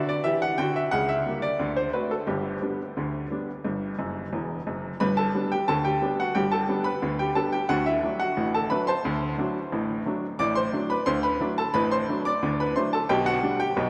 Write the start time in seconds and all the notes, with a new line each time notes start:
Already playing: D3 F#4
0.09 D5
0.24 E3 G4 E5
0.42 F#5
0.58 D3 F#4 G5
0.76 E5
0.91 C#2 C#3 F#5
1.09 E5
1.26 G3 A#3 G4
1.42 D5
1.59 D2 D3
1.77 C5
1.93 A3 C4 F#4 B4
2.11 A4
2.27 G1 G2 G4
2.62 G3 B3 D4
2.97 D2 D3
3.31 G3 B3 D4
3.64 G1 G2
3.99 F#1 F#2
4.33 E1 E2
4.67 F#1 F#2
5.00 G1 G2 B4 B5
5.17 A4 A5
5.35 G3 B3 D4
5.52 G4 G5
5.68 D2 D3 A4 A5
5.85 G4 G5
6.02 G3 B3 D4
6.20 F#4 F#5
6.35 G1 G2 G4 G5
6.52 A4 A5
6.69 G3 B3 D4
6.84 B4 B5
7.02 D2 D3
7.19 G4 G5
7.35 G3 B3 D4 A4 A5
7.53 G4 G5
7.69 D2 D3 F#4 F#5
7.86 E4 E5
8.03 F#3 A3 D4
8.19 F#4 F#5
8.37 A1 A2
8.54 A4 A5
8.70 F#3 A3 D4 B4 B5
8.87 C5 A5 C6
9.05 D2 D3
9.38 F#3 A3 D4
9.72 A1 A2
10.06 F#3 A3 D4
10.39 A1 A2 D5 D6
10.55 C5 C6
10.73 F#3 A3 D4
10.90 B4 B5
11.06 D2 D3 C5 C6
11.23 B4 B5
11.41 F#3 A3 D4
11.58 A4 A5
11.74 A1 A2 B4 B5
11.91 C5 C6
12.09 F#3 A3 D4
12.25 D5 D6
12.43 D2 D3
12.60 B4 B5
12.76 F#3 A3 D4 C5 C6
12.93 A4 A5
13.09 B1 B2 G4 G5
13.26 F#4 F#5
13.43 G3 D4
13.60 G4 G5
13.77 B1 B2